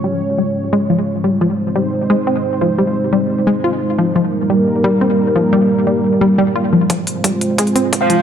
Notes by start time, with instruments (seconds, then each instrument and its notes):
Already playing: analog synth pad G#3 C#4 F4 C#5
0.04 synth arpeggio sound G3
0.38 synth arpeggio sound G3
0.73 synth arpeggio sound G#3
0.90 synth arpeggio sound F3
1.24 synth arpeggio sound G3
1.41 synth arpeggio sound F3, analog synth pad C4 D#4 C5
1.76 synth arpeggio sound G3
2.10 synth arpeggio sound G#3
2.27 synth arpeggio sound C4
2.61 synth arpeggio sound F3
2.79 synth arpeggio sound G3
3.13 synth arpeggio sound G3
3.47 synth arpeggio sound G#3
3.64 synth arpeggio sound F4
3.98 synth arpeggio sound F3
4.16 synth arpeggio sound F3, analog synth pad G3 A#3 A#4
4.50 synth arpeggio sound G3
4.84 synth arpeggio sound G3
5.01 synth arpeggio sound C4
5.36 synth arpeggio sound F3
5.53 synth arpeggio sound G3
5.87 synth arpeggio sound G3
6.21 synth arpeggio sound G3
6.38 synth arpeggio sound G3
6.56 synth arpeggio sound F4
6.73 synth arpeggio sound F3
6.90 synth arpeggio sound F3, analog synth pad G#3 C4 F4 C5, kick, closed hi-hat
7.07 closed hi-hat
7.24 synth arpeggio sound G3, kick, closed hi-hat
7.41 closed hi-hat
7.58 synth arpeggio sound G#3, kick, closed hi-hat
7.67 closed hi-hat
7.76 synth arpeggio sound C4, closed hi-hat
7.93 kick, closed hi-hat
8.01 distorted electric guitar F4 C5 F5
8.10 synth arpeggio sound F3, closed hi-hat